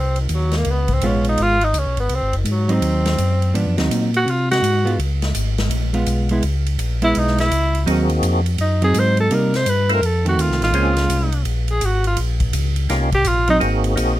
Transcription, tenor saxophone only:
0.00 0.19 C4 medium
0.21 0.36 D#3 soft
0.34 0.58 F#3 medium
0.57 0.72 A#3 medium
0.71 0.94 B3 medium
0.93 1.08 C4 medium
1.07 1.28 C#4 medium
1.29 1.44 D#4 loud
1.42 1.66 F4 loud
1.64 1.80 D#4 loud
1.79 2.00 C#4 medium
2.00 2.16 B3 medium
2.15 2.36 C4 medium
2.38 2.53 D#3 soft
2.51 2.74 F#3 medium
2.72 3.56 C4 medium
4.17 4.32 F#4 loud
4.30 4.51 F4 medium
4.51 4.96 F#4 loud
7.04 7.20 E4 loud
7.18 7.39 D#4 loud
7.40 7.85 E4 loud
8.61 8.81 D#4 medium
8.84 9.01 G#4 loud
8.99 9.20 C5 loud
9.20 9.36 A4 loud
9.35 9.58 A#4 medium
9.56 9.71 C5 loud
9.70 9.91 B4 medium
9.94 10.07 A#4 loud
10.06 10.27 A4 medium
10.29 10.43 F#4 medium
10.42 10.63 F4 medium
10.64 11.43 F4 medium
11.71 11.87 G#4 loud
11.85 12.06 F#4 medium
12.07 12.18 F4 medium
13.15 13.29 G4 loud
13.28 13.50 F4 loud
13.50 13.57 D#4 loud

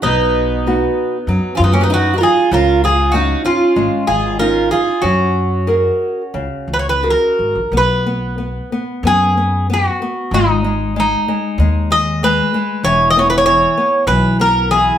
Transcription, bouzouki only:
0.03 1.57 D#4 medium
1.57 1.63 F4 medium
1.64 1.72 D#4 medium
1.74 1.81 C#4 medium
1.83 1.91 D#4 medium
1.94 2.16 F#4 medium
2.18 2.22 A#4 medium
2.23 2.51 G#4 medium
2.54 2.82 A#4 medium
2.85 3.13 G#4 medium
3.12 3.42 F#4 medium
3.46 4.10 F4 medium
4.07 4.39 G#4 medium
4.39 4.71 A#4 medium
4.71 5.04 G#4 medium
5.02 7.34 F#4 medium
6.73 6.79 B4 medium
6.79 6.85 C#5 medium
6.89 7.08 B4 medium
7.10 7.77 A#4 medium
7.77 9.06 B4 medium
9.07 9.66 G#4 loud
9.74 10.34 F#4 medium
10.34 10.98 D#4 medium
11.00 11.94 D#4 medium
11.92 12.23 D#5 loud
12.24 12.84 B4 loud
12.84 13.09 C#5 loud
13.11 13.18 D#5 loud
13.19 13.27 C#5 medium
13.30 13.37 B4 medium
13.38 13.45 C#5 medium
13.46 14.04 C#5 loud
14.07 14.36 B4 loud
14.41 14.69 A#4 loud
14.71 14.98 G#4 medium

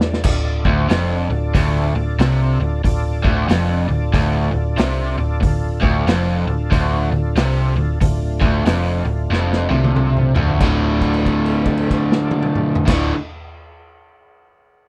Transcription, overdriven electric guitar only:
0.25 0.57 D2 medium
0.66 0.89 D2 loud
0.89 1.28 F2 medium
1.30 1.49 D2 medium
1.54 1.93 D2 loud
1.96 2.15 D2 medium
2.19 2.58 C3 loud
2.60 2.79 D2 medium
2.84 3.16 D2 medium
3.24 3.47 D2 loud
3.49 3.87 F2 loud
3.89 4.08 D2 medium
4.13 4.51 D2 loud
4.52 4.72 D2 medium
4.78 5.17 C3 loud
5.18 5.38 D2 medium
5.41 5.74 D2 medium
5.81 6.06 D2 loud
6.07 6.46 F2 loud
6.48 6.67 D2 medium
6.71 7.10 D2 medium
7.12 7.32 D2 medium
7.36 7.76 C3 loud
7.76 7.96 D2 medium
8.02 8.34 D2 medium
8.41 8.65 D2 loud
8.66 9.05 F2 loud
9.05 9.26 D2 medium
9.30 9.70 F2 loud
9.70 10.34 C3 medium
10.35 10.59 D2 medium
10.60 12.86 D2 loud
10.60 12.88 A2 loud
10.60 12.90 D3 loud
12.86 13.12 D2 loud
12.86 13.14 A2 loud
12.90 13.14 D3 loud

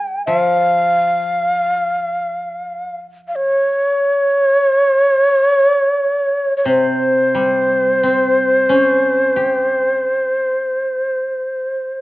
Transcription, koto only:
0.00 0.32 G3 soft
0.00 0.37 C#4 soft
0.00 1.04 G4 soft
0.00 1.72 G#4 soft
0.27 3.65 F3 soft
6.65 10.03 C3 soft
7.35 10.03 G3 soft
8.03 10.71 C4 soft
8.69 11.38 C#4 soft
9.36 12.01 G4 soft

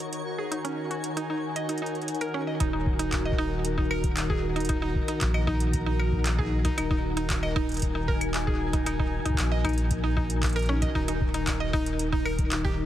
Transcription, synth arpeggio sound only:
0.38 0.50 G#4 medium
0.52 0.63 D#4 medium
0.65 0.76 C#4 medium
0.91 1.02 F#4 medium
1.17 1.28 D#4 medium
1.30 1.37 D#4 medium
1.56 1.67 D#5 medium
1.69 1.76 D#4 medium
1.82 1.93 D#4 medium
2.21 2.32 A#4 loud
2.34 2.41 C#4 medium
2.47 2.54 D#5 medium
2.60 2.67 D#4 medium
2.73 2.85 D#4 medium
2.99 3.11 D#4 medium
3.25 3.32 D#5 medium
3.38 3.50 D#4 loud
3.78 3.89 D#4 medium
3.91 4.02 A#4 medium
4.30 4.42 G#4 medium
4.56 4.68 D#4 medium
4.69 4.76 D#4 medium
4.82 4.93 D#4 medium
5.08 5.19 D#4 medium
5.34 5.41 D#5 medium
5.47 5.59 D#4 loud
5.86 5.98 D#4 medium
6.00 6.11 A#4 medium
6.39 6.51 G#4 medium
6.65 6.76 D#4 medium
6.78 6.84 D#4 medium
6.91 7.02 D#4 medium
7.17 7.28 D#4 medium
7.43 7.50 D#5 medium
7.56 7.67 D#4 loud
7.95 8.06 D#4 medium
8.08 8.19 A#4 medium
8.47 8.60 G#4 medium
8.73 8.85 D#4 medium
8.86 8.93 D#4 medium
8.99 9.11 D#4 medium
9.25 9.37 D#4 medium
9.52 9.58 D#5 medium
9.65 9.76 D#4 loud
10.04 10.15 D#4 medium
10.17 10.28 D#4 medium
10.56 10.67 A#4 loud
10.69 10.76 C#4 loud
10.82 10.89 D#5 medium
10.95 11.02 D#4 medium
11.08 11.19 D#4 medium
11.34 11.46 D#4 medium
11.60 11.67 D#5 medium
11.73 11.85 D#4 loud
12.13 12.24 D#4 medium
12.26 12.37 A#4 medium
12.65 12.77 G4 medium

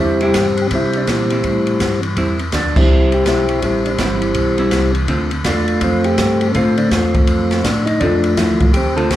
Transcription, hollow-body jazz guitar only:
0.21 0.33 G3 medium
0.21 0.33 C4 medium
0.21 0.33 E4 medium
1.31 1.78 G3 soft
1.31 1.78 C4 medium
1.31 1.78 E4 soft
2.17 2.37 G3 medium
2.17 2.38 C4 medium
2.17 2.38 E4 medium
3.99 4.19 G3 medium
3.99 4.20 C4 medium
3.99 4.20 E4 medium
4.58 5.05 G3 medium
4.58 5.06 C4 medium
4.58 5.06 E4 medium
5.08 5.29 D3 medium
5.08 5.29 A3 medium
5.08 5.29 C4 medium
5.08 5.30 F4 medium
6.54 6.75 D3 medium
6.54 6.75 A3 medium
6.54 6.76 C4 medium
6.54 6.76 F4 medium
8.01 8.56 D3 medium
8.01 8.56 A3 medium
8.01 8.56 C4 medium
8.01 8.56 F4 medium
8.96 9.09 D3 medium
8.96 9.09 A3 medium
8.96 9.09 C4 medium
8.96 9.09 F4 medium

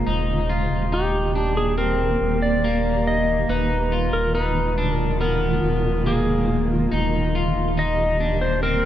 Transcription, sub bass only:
0.07 0.68 D#1 loud
0.71 2.17 D#1 medium
2.21 3.45 D#1 loud
3.49 4.10 D#1 loud
4.13 5.59 D#1 medium
5.63 6.88 D#1 loud
6.92 7.53 D#1 loud
7.56 8.85 D#1 medium

